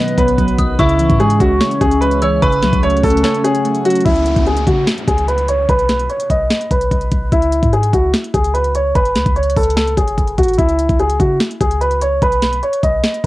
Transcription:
Already playing: B2 D#3 F#3 B3 B4 D#5 F#5 F#6
0.08 closed hi-hat
0.18 B1 B3 B4, kick, closed hi-hat
0.28 closed hi-hat
0.38 B1 F#3, kick, closed hi-hat
0.48 closed hi-hat
0.58 B1 D#3 D#6, kick, closed hi-hat
0.79 C#2 C#3 C#4 E4 G#4 E5 C#6, kick, closed hi-hat
0.89 closed hi-hat
0.99 E3, closed hi-hat
1.10 G#2, kick, closed hi-hat
1.20 G#3 G#4, closed hi-hat
1.30 closed hi-hat
1.40 C#2 C#4 F#4, kick, closed hi-hat
1.61 C#5, snare, closed hi-hat
1.71 closed hi-hat
1.81 C#2 C#4 G#4, kick, closed hi-hat
1.91 closed hi-hat
2.01 G#3 B4, closed hi-hat
2.11 closed hi-hat
2.22 E3 C#5 E6, closed hi-hat
2.42 F#1 C#3 F#3 A3 B4 F#5 C#6, kick, closed hi-hat
2.52 closed hi-hat
2.62 C#2 F#3, snare, closed hi-hat
2.73 C#2, kick, closed hi-hat
2.83 A3 C#5, closed hi-hat
2.90 closed hi-hat
2.97 closed hi-hat
3.04 C#2 C#4 A4, kick, closed hi-hat, open hi-hat
3.10 closed hi-hat
3.17 closed hi-hat
3.23 A4 C#5, snare, closed hi-hat
3.35 closed hi-hat
3.44 C#4 G#4, closed hi-hat
3.55 closed hi-hat
3.65 A3, closed hi-hat
3.75 closed hi-hat
3.85 F#3 F#4, closed hi-hat
3.90 closed hi-hat
3.95 closed hi-hat
4.00 closed hi-hat
4.05 C#2 E4, kick, closed hi-hat, downlifter
4.16 closed hi-hat
4.26 closed hi-hat
4.36 C#2, kick, closed hi-hat
4.46 G#4, closed hi-hat
4.57 closed hi-hat
4.67 C#3 F#4, kick, closed hi-hat
4.87 snare, closed hi-hat
4.98 closed hi-hat
5.07 C#2 G#4, kick, closed hi-hat
5.18 closed hi-hat
5.28 B4, closed hi-hat
5.38 closed hi-hat
5.48 C#5, closed hi-hat
5.69 B1 B4, kick, closed hi-hat
5.79 closed hi-hat
5.89 snare, closed hi-hat
5.99 closed hi-hat
6.10 C#5, closed hi-hat
6.20 closed hi-hat
6.30 B1 D#5, kick, closed hi-hat
6.50 snare, closed hi-hat
6.61 closed hi-hat
6.71 B1 B4, kick, closed hi-hat
6.81 closed hi-hat
6.91 B1, kick, closed hi-hat
7.01 closed hi-hat
7.12 B1, kick, closed hi-hat
7.32 C#2 E4, kick, closed hi-hat
7.42 closed hi-hat
7.52 closed hi-hat
7.63 G#2, kick, closed hi-hat
7.73 G#4, closed hi-hat
7.83 closed hi-hat
7.93 C#2 F#4, kick, closed hi-hat
8.14 snare, closed hi-hat
8.24 closed hi-hat
8.34 C#2 G#4, kick, closed hi-hat
8.44 closed hi-hat
8.54 B4, closed hi-hat
8.64 closed hi-hat
8.75 C#5, closed hi-hat
8.95 F#1 B4, kick, closed hi-hat
9.05 closed hi-hat
9.15 C#2, snare, closed hi-hat
9.26 C#2, kick, closed hi-hat
9.36 C#5, closed hi-hat
9.43 closed hi-hat
9.50 closed hi-hat
9.57 C#2 A4, kick, closed hi-hat, open hi-hat
9.63 closed hi-hat
9.70 closed hi-hat
9.76 A4, snare, closed hi-hat
9.88 closed hi-hat
9.97 F#1 G#4, kick, closed hi-hat
10.08 closed hi-hat
10.18 F#1, kick, closed hi-hat
10.28 closed hi-hat
10.38 A1 F#4, kick, closed hi-hat
10.43 closed hi-hat
10.48 closed hi-hat
10.54 closed hi-hat
10.58 C#2 E4, kick, closed hi-hat
10.69 closed hi-hat
10.79 closed hi-hat
10.89 C#2, kick, closed hi-hat
10.99 G#4, closed hi-hat
11.10 closed hi-hat
11.20 C#3 F#4, kick, closed hi-hat
11.40 snare, closed hi-hat
11.51 closed hi-hat
11.60 C#2 G#4, kick, closed hi-hat
11.71 closed hi-hat
11.81 B4, closed hi-hat
11.91 closed hi-hat
12.01 C#5, closed hi-hat
12.22 B1 B4, kick, closed hi-hat
12.32 closed hi-hat
12.42 snare, closed hi-hat
12.53 closed hi-hat
12.63 C#5, closed hi-hat
12.73 closed hi-hat
12.83 B1 D#5, kick, closed hi-hat
13.04 snare, closed hi-hat
13.14 closed hi-hat

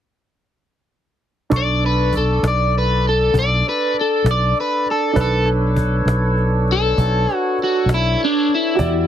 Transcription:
1.50 B1 D4 A4 D5 C#6, cajon bass
1.57 D5
1.83 B4, cajon slap
2.13 cajon bass
2.17 A4
2.43 B1, cajon slap
2.48 D5
2.74 cajon slap
2.78 B4
3.04 cajon slap
3.09 A4
3.33 B1, cajon bass, cajon slap
3.39 D5
3.64 cajon slap
3.69 B4
3.94 cajon slap
4.01 A4
4.24 B1, cajon slap
4.31 D5
4.56 cajon slap
4.60 B4
4.86 cajon slap
4.91 A4
5.13 B1 D#3 D4 A4 B4 D5, cajon bass
5.21 A4
5.45 D4 A4 C#5, cajon slap
5.76 cajon bass
6.05 B1, cajon slap
6.37 cajon slap
6.68 cajon slap
6.72 A4
6.98 B1, cajon bass
7.29 cajon slap
7.36 F#4
7.58 cajon slap
7.63 F#4
7.86 B1, cajon slap
7.94 E4
8.18 cajon slap
8.24 D4
8.49 cajon slap
8.54 E4
8.75 E2 G#3 F#4 G4 D5, cajon bass
8.80 E4

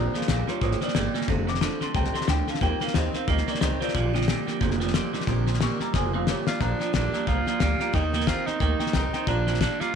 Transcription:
Already playing: A#2 D3 F3 G3 A#3 C4 D4 G4 D5 A#5
0.13 A#2 F3 G3 A#3 D4 G4 G#4 F5, muted upright bass stroke, snare
0.21 snare
0.28 A#1 A#2 F3 G3 A#3 D4 G4 G#4 F5, snare, hi-hat pedal
0.47 A#2 G3 A#3 D4 F4 G4 C#5, muted upright bass stroke, snare
0.61 G#1 A#2 F3 G3 A#3 D4 F4 G4 C#5, kick, snare
0.71 snare
0.81 A#2 F3 G3 A#3 D4 G4 D5, muted upright bass stroke, snare
0.88 snare
0.95 G1 A#2 F3 G3 A#3 D4 G4, snare, hi-hat pedal
1.14 A#2 G3 A#3 D4 G4, muted upright bass stroke, snare
1.21 snare
1.27 F1 F2 C3 D3 F3 G3 A3 C4 D4 A4, kick, snare
1.47 F2 C3 C4 D4 A4 D6, snare
1.55 snare
1.61 F2 D3 F3 A3 C4 D4 A4, snare, hi-hat pedal
1.80 F2 D3 C4 D4 A4 C6, muted upright bass stroke, snare
1.94 C2 F2 C3 A3 C4 D4 A4 G5, kick, snare
2.04 snare
2.14 F2 C3 C4 D4 A4 C6, muted upright bass stroke, snare
2.21 snare
2.27 D2 F2 D3 F3 A3 C4 D4 A4 G5, snare, hi-hat pedal
2.47 F2 D3 C4 D4 A4 F5, muted upright bass stroke, snare
2.54 snare
2.61 D#2 D#3 F3 G3 A#3 C4 G4 A#4 G5, kick, snare
2.80 D#3 A#3 C4 G4 A#4 F5, muted upright bass stroke, snare
2.87 snare
2.94 D#2 D#3 G3 C4 G4 A#4 D#5, snare, hi-hat pedal
3.13 D#3 C4 G4 A#4 F5, snare
3.27 D2 D#3 F3 G3 A#3 C4 G4 A#4 D#5, kick, snare
3.37 snare
3.47 D#3 A#3 C4 G4 A#4 D5, muted upright bass stroke, snare
3.54 snare
3.61 C2 D#3 G3 C4 G4 A#4 D#5, snare, hi-hat pedal
3.80 D#3 C4 F4 G4 A#4 D5, muted upright bass stroke, snare
3.88 snare
3.94 A#1 A#2 D3 F3 A#3 D4 G4, kick, snare
4.13 A#2 D3 F3 G3 A#3 C4 D4 G4, snare
4.21 snare
4.28 A#2 D3 F3 G3 A#3 D4 G4, snare, hi-hat pedal
4.46 A#2 F3 G3 A#3 D4 G4, muted upright bass stroke, snare
4.60 F1 A#2 D3 F3 G3 A#3 C4 D4 G4, kick, snare
4.71 snare
4.80 A#2 F3 A#3 D4 G4, snare
4.87 snare
4.94 A#2 D3 F3 G3 A#3 D4 G4, snare, hi-hat pedal
5.13 A#2 F3 G3 A#3 D4 G4, muted upright bass stroke, snare
5.20 snare
5.27 A#1 A#2 D3 F3 G3 A#3 C4 D4 G4, kick, snare
5.47 A#2 F3 A#3 D4 G4, snare
5.54 snare
5.60 A#2 D3 F3 G3 A#3 D4 G4 C#6, snare, hi-hat pedal
5.79 A#2 F3 G3 A#3 D4 G4 A#5, muted upright bass stroke, snare
5.94 F1 A#2 F3 A#3 D4 G4 G#5, kick, snare
6.13 A#2 D3 F3 G3 A#3 C4 G4 F5
6.27 A#2 D3 F3 G3 A#3 D4 G4 C#5, snare, hi-hat pedal
6.46 A#2 F3 G3 A#3 D4 F4 G4 D5, muted upright bass stroke, snare
6.60 A#1 A#2 D3 F3 A#3 D4 G4 D5 F5 A#5, kick, snare
6.79 A#2 F3 A#3 D4 G4 D5 A#5, snare
6.93 A#1 A#2 D3 F3 G3 A#3 D4 G4 D5, kick, snare, hi-hat pedal
7.12 A#2 F3 G3 A#3 D4 G4 D5 F5 A#5, snare
7.27 C2 A#2 F3 A#3 D4 F4 G4 D5 F5 A#5, kick, snare
7.46 A#2 F3 A#3 D4 G4 D5 F5 A#5, muted upright bass stroke, snare
7.60 D2 A#2 D3 F3 G3 A#3 D4 G4 D5 F5 A#5, kick, snare, hi-hat pedal
7.79 A#2 F3 G3 A#3 D4 G4 D5 F5 A#5, muted upright bass stroke, snare
7.93 D#2 C3 D#3 A#3 D#4 G4 A#4 D#5 G5 A#5, kick, snare
8.12 D#3 A#3 D#4 G4 A#4 G5 A#5, snare
8.20 snare
8.26 C3 D#3 A#3 C4 D#4 F4 G4 A#4 D#5 G5 A#5, kick, snare, hi-hat pedal
8.46 D#3 A#3 C4 D#4 G4 A#4 D#5 G5 A#5, muted upright bass stroke, snare
8.59 D2 D#3 A#3 D#4 G4 A#4 D#5 G5 A#5, kick, snare
8.79 D#3 A#3 D#4 G4 A#4 D#5 G5 A#5, muted upright bass stroke, snare
8.86 snare
8.93 C2 C3 D#3 A#3 C4 D#4 G4 A#4 D#5 G5 A#5, kick, snare, hi-hat pedal
9.13 D#3 A#3 C4 D#4 G4 A#4 D#5 G5 A#5, muted upright bass stroke, snare
9.26 A#1 A#2 F3 A#3 D4 F4 G4 D5 F5 A#5, kick, snare
9.46 A#2 F3 D4 G4 D5 F5 A#5, snare
9.54 snare
9.60 A#2 G3 A#3 D4 F4 G4 D5 F5, kick, snare, hi-hat pedal
9.79 A#2 G3 D4 F4 G4 D5 F5 A#5, muted upright bass stroke, snare

